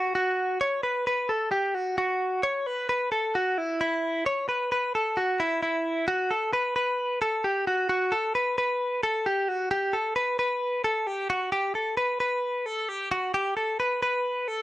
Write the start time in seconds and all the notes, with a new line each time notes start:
Already playing: F#4
0.15 F#4
0.61 C#5
0.83 B4
1.07 B4
1.29 A4
1.51 G4
1.75 F#4
1.98 F#4
2.43 C#5
2.66 B4
2.89 B4
3.12 A4
3.35 F#4
3.58 E4
3.81 E4
4.26 C#5
4.49 B4
4.72 B4
4.95 A4
5.17 F#4
5.40 E4
5.63 E4
6.08 F#4
6.31 A4
6.53 B4
6.76 B4
7.22 A4
7.44 G4
7.67 F#4
7.89 F#4
8.12 A4
8.35 B4
8.58 B4
9.03 A4
9.26 G4
9.48 F#4
9.71 G4
9.93 A4
10.16 B4
10.39 B4
10.84 A4
11.07 G4
11.30 F#4
11.52 G4
11.75 A4
11.97 B4
12.20 B4
12.66 A4
12.89 G4
13.11 F#4
13.34 G4
13.57 A4
13.80 B4
14.02 B4
14.48 A4